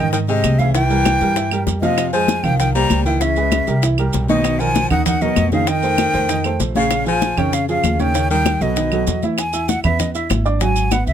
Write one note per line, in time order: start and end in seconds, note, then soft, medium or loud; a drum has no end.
0.00 0.41 G#2 medium
0.00 0.12 D#3 medium
0.00 0.23 D#3 medium
0.00 0.23 D#4 medium
0.00 0.23 D#5 medium
0.00 0.11 G5 medium
0.12 0.20 D#3 medium
0.12 0.18 G5 medium
0.12 high bongo medium
0.12 high conga soft
0.12 maracas medium
0.28 0.61 C3 medium
0.28 0.54 G#3 medium
0.28 0.54 G4 medium
0.28 0.54 G#4 medium
0.28 0.60 D#5 medium
0.28 high bongo soft
0.28 high conga soft
0.28 maracas soft
0.44 1.15 C2 medium
0.44 high bongo soft
0.44 low bongo medium
0.44 high conga medium
0.44 claves medium
0.44 maracas medium
0.59 0.73 C#3 medium
0.59 0.72 E3 medium
0.59 0.72 E4 medium
0.59 0.72 E5 medium
0.59 0.73 F5 medium
0.59 high bongo soft
0.59 high conga medium
0.59 maracas soft
0.74 1.63 E3 medium
0.74 0.87 E3 medium
0.74 0.88 E4 medium
0.74 0.88 E5 medium
0.74 1.63 G5 loud
0.74 high bongo medium
0.74 maracas medium
0.90 1.15 G3 medium
0.90 1.15 G4 medium
0.90 1.15 A#4 medium
0.90 high conga soft
0.90 maracas soft
1.05 high bongo medium
1.05 high conga medium
1.05 claves medium
1.05 maracas medium
1.21 1.64 G2 medium
1.21 1.34 G3 medium
1.21 1.34 G4 medium
1.21 1.34 A#4 medium
1.21 high bongo soft
1.21 high conga soft
1.21 maracas soft
1.36 1.49 E3 medium
1.36 1.49 E4 medium
1.36 1.49 E5 medium
1.36 high bongo medium
1.36 high conga soft
1.36 maracas medium
1.51 1.77 G3 medium
1.51 1.77 G4 medium
1.51 1.77 A#4 medium
1.51 high bongo soft
1.51 high conga soft
1.51 claves medium
1.51 maracas soft
1.67 2.38 F2 medium
1.67 high bongo soft
1.67 low bongo medium
1.67 high conga soft
1.67 maracas medium
1.81 2.11 C3 medium
1.81 2.08 F3 medium
1.81 2.08 F4 medium
1.81 2.10 D#5 medium
1.81 2.08 F5 medium
1.81 high bongo soft
1.81 high conga medium
1.81 maracas soft
1.98 high bongo medium
1.98 high conga soft
1.98 claves medium
1.98 maracas medium
2.12 2.45 F3 medium
2.12 2.39 G#3 medium
2.12 2.39 G#4 medium
2.12 2.39 C5 medium
2.12 2.45 G#5 loud
2.12 high conga soft
2.12 maracas soft
2.28 high bongo medium
2.28 high conga medium
2.28 maracas medium
2.43 2.87 C2 medium
2.43 2.59 D#3 medium
2.43 2.69 F3 medium
2.43 2.69 F4 medium
2.43 2.70 F5 medium
2.43 2.58 G5 loud
2.43 high bongo soft
2.43 high conga soft
2.43 low conga medium
2.43 claves medium
2.43 maracas soft
2.59 2.74 D#3 medium
2.59 2.73 G5 medium
2.59 high bongo medium
2.59 high conga soft
2.59 maracas medium
2.74 3.03 G3 medium
2.74 3.00 A#3 medium
2.74 3.00 G4 medium
2.74 3.01 C5 medium
2.74 3.03 A#5 loud
2.74 high bongo soft
2.74 high conga soft
2.74 maracas soft
2.90 3.62 C#2 medium
2.90 high bongo soft
2.90 low bongo medium
2.90 high conga medium
2.90 claves medium
2.90 maracas medium
3.05 3.22 D#3 medium
3.05 3.19 E3 medium
3.05 3.19 E4 medium
3.05 3.19 E5 medium
3.05 3.22 G5 medium
3.05 high bongo soft
3.05 high conga medium
3.05 maracas soft
3.21 3.86 C#3 medium
3.21 3.34 E3 medium
3.21 3.34 E4 medium
3.21 3.86 E5 medium
3.21 3.34 E5 medium
3.21 high bongo medium
3.21 high conga soft
3.21 maracas medium
3.36 3.62 G#3 medium
3.36 3.62 G#4 medium
3.36 3.62 B4 medium
3.36 high conga soft
3.36 maracas soft
3.52 high bongo medium
3.52 high conga medium
3.52 claves medium
3.52 maracas medium
3.67 4.10 C2 medium
3.67 3.80 G3 medium
3.67 3.80 G4 medium
3.67 3.80 A#4 medium
3.67 high bongo soft
3.67 high conga soft
3.67 maracas soft
3.83 3.96 E3 medium
3.83 3.96 E4 medium
3.83 3.96 E5 medium
3.83 high bongo medium
3.83 high conga soft
3.83 maracas medium
3.98 4.24 G3 medium
3.98 4.24 G4 medium
3.98 4.24 A#4 medium
3.98 high bongo soft
3.98 high conga soft
3.98 claves medium
3.98 maracas soft
4.13 4.85 B1 medium
4.13 high bongo soft
4.13 low bongo medium
4.13 high conga soft
4.13 maracas medium
4.29 4.61 B2 medium
4.29 4.54 D#3 medium
4.29 4.55 D#4 medium
4.29 4.61 D#5 medium
4.29 4.55 D#5 medium
4.29 high bongo soft
4.29 high conga medium
4.29 maracas soft
4.44 high bongo medium
4.44 high conga soft
4.44 claves medium
4.44 maracas medium
4.59 4.85 D#3 medium
4.59 4.90 F3 medium
4.59 4.86 A#4 medium
4.59 4.85 F#5 medium
4.59 4.90 G#5 loud
4.59 high conga soft
4.59 maracas soft
4.75 high bongo medium
4.75 high conga medium
4.75 maracas medium
4.90 5.34 D#2 medium
4.90 5.16 D#3 medium
4.90 5.05 D#3 medium
4.90 5.16 D#4 medium
4.90 5.16 D#5 medium
4.90 5.05 F#5 loud
4.90 high bongo soft
4.90 high conga soft
4.90 low conga medium
4.90 claves medium
4.90 maracas soft
5.06 5.23 D#3 medium
5.06 5.23 F#5 medium
5.06 high bongo medium
5.06 high conga soft
5.06 low conga medium
5.06 maracas medium
5.21 5.51 B2 medium
5.21 5.47 F#3 medium
5.21 5.47 F#4 medium
5.21 5.47 A#4 medium
5.21 5.52 D#5 loud
5.21 high bongo soft
5.21 high conga soft
5.21 maracas soft
5.36 6.09 F2 medium
5.36 high bongo soft
5.36 low bongo medium
5.36 high conga medium
5.36 claves medium
5.36 maracas medium
5.52 5.69 C#3 medium
5.52 5.65 D#3 medium
5.52 5.65 D#4 medium
5.52 5.66 D#5 medium
5.52 5.69 F5 medium
5.52 high bongo soft
5.52 high conga medium
5.52 maracas soft
5.67 6.60 D#3 loud
5.67 5.81 D#3 medium
5.67 5.81 D#4 medium
5.67 5.81 D#5 medium
5.67 6.60 G5 loud
5.67 high bongo medium
5.67 maracas medium
5.83 6.09 A3 medium
5.83 6.09 A4 medium
5.83 6.09 C5 medium
5.83 high conga soft
5.83 maracas soft
5.98 high bongo medium
5.98 high conga medium
5.98 claves medium
5.98 maracas medium
6.14 6.57 F2 medium
6.14 6.27 A3 medium
6.14 6.27 A4 medium
6.14 6.27 C5 medium
6.14 high bongo soft
6.14 high conga soft
6.14 maracas soft
6.29 6.42 D#3 medium
6.29 6.42 D#4 medium
6.29 6.42 D#5 medium
6.29 high bongo medium
6.29 high conga soft
6.29 maracas medium
6.44 6.70 A3 medium
6.44 6.70 A4 medium
6.44 6.71 C5 medium
6.44 high bongo soft
6.44 high conga soft
6.44 claves medium
6.44 maracas soft
6.60 7.32 A#1 medium
6.60 high bongo soft
6.60 low bongo medium
6.60 high conga soft
6.60 maracas medium
6.75 7.01 C#3 medium
6.75 7.05 C#3 medium
6.75 7.01 C#4 medium
6.75 7.01 C#5 medium
6.75 7.05 F5 medium
6.75 high bongo soft
6.75 high conga medium
6.75 maracas soft
6.91 high bongo medium
6.91 high conga soft
6.91 claves medium
6.91 maracas medium
7.06 7.32 F3 medium
7.06 7.39 F3 medium
7.06 7.32 F4 medium
7.06 7.32 G#4 medium
7.06 7.40 G#5 loud
7.06 high conga soft
7.06 maracas soft
7.22 high bongo medium
7.22 high conga loud
7.22 maracas medium
7.37 7.80 F2 loud
7.37 7.63 C#3 medium
7.37 7.55 D#3 medium
7.37 7.63 C#4 medium
7.37 7.63 C#5 medium
7.37 7.55 G5 medium
7.37 high bongo soft
7.37 high conga soft
7.37 low conga medium
7.37 claves medium
7.37 maracas soft
7.53 7.68 C#3 medium
7.53 7.69 F5 medium
7.53 high bongo medium
7.53 high conga soft
7.53 maracas medium
7.69 7.92 C#3 medium
7.69 7.94 F3 medium
7.69 7.94 F4 medium
7.69 7.94 G#4 medium
7.69 7.93 F5 medium
7.69 high bongo soft
7.69 high conga soft
7.69 maracas soft
7.84 8.55 D#2 medium
7.84 high bongo soft
7.84 low bongo medium
7.84 high conga medium
7.84 claves medium
7.84 maracas medium
7.92 8.01 C#3 medium
7.92 8.02 F5 medium
7.99 8.12 C#3 medium
7.99 8.30 D#3 medium
7.99 8.12 C#4 medium
7.99 8.12 C#5 medium
7.99 8.30 G5 medium
7.99 high bongo soft
7.99 high conga medium
7.99 maracas soft
8.14 8.27 C#3 medium
8.14 8.28 C#4 medium
8.14 8.28 C#5 medium
8.14 high bongo medium
8.14 maracas medium
8.30 8.63 D#3 medium
8.30 8.56 G3 medium
8.30 8.56 G4 medium
8.30 8.56 A#4 medium
8.30 8.63 G5 medium
8.30 high conga soft
8.30 maracas soft
8.46 high bongo medium
8.46 high conga medium
8.46 claves medium
8.46 maracas medium
8.61 9.04 B1 medium
8.61 9.23 B2 medium
8.61 8.74 F#3 medium
8.61 8.74 F#4 medium
8.61 8.74 A4 medium
8.61 9.23 D#5 medium
8.61 high bongo soft
8.61 high conga soft
8.61 maracas soft
8.76 8.89 D#3 medium
8.76 8.89 D#4 medium
8.76 8.89 D#5 medium
8.76 high bongo medium
8.76 high conga soft
8.76 maracas medium
8.92 9.17 F#3 medium
8.92 9.17 F#4 medium
8.92 9.18 A4 medium
8.92 high bongo soft
8.92 high conga soft
8.92 claves medium
8.92 maracas soft
9.07 9.79 E2 medium
9.07 high bongo soft
9.07 low bongo medium
9.07 high conga soft
9.07 maracas medium
9.22 9.35 E3 medium
9.22 9.36 E4 medium
9.22 9.36 E5 medium
9.22 high bongo soft
9.22 high conga medium
9.22 maracas soft
9.38 9.70 G#5 medium
9.38 high bongo medium
9.38 high conga soft
9.38 claves medium
9.38 maracas medium
9.53 9.79 E4 medium
9.53 9.79 E5 medium
9.53 9.79 E6 medium
9.53 high conga soft
9.53 maracas medium
9.68 9.83 F#5 medium
9.68 high bongo medium
9.68 high conga medium
9.68 maracas medium
9.84 10.27 E2 medium
9.84 10.09 B3 medium
9.84 10.09 B4 medium
9.84 10.01 E5 medium
9.84 10.10 B5 medium
9.84 high conga soft
9.84 low conga medium
9.84 claves medium
9.84 maracas soft
9.99 10.14 D#5 medium
9.99 high bongo medium
9.99 high conga soft
9.99 low conga medium
9.99 maracas medium
10.14 10.40 E4 medium
10.14 10.29 E5 medium
10.14 10.40 E5 medium
10.14 10.41 E6 medium
10.14 high conga soft
10.14 maracas medium
10.30 11.02 G#1 medium
10.30 high bongo medium
10.30 low bongo medium
10.30 high conga medium
10.30 claves medium
10.30 maracas medium
10.45 10.58 D4 medium
10.45 10.58 D5 medium
10.45 10.59 D6 medium
10.45 maracas soft
10.61 10.86 F#3 medium
10.61 10.87 F#4 medium
10.61 10.87 F#5 medium
10.61 10.93 G#5 medium
10.61 high bongo medium
10.61 high conga soft
10.61 maracas medium
10.76 high bongo soft
10.76 high conga soft
10.76 maracas medium
10.91 11.13 B3 medium
10.91 11.13 B4 medium
10.91 11.07 F#5 medium
10.91 11.13 B5 medium
10.91 high bongo medium
10.91 high conga medium
10.91 claves medium
10.91 maracas medium
11.07 11.13 C#2 medium
11.07 11.13 E5 medium
11.07 high bongo soft
11.07 high conga soft
11.07 maracas soft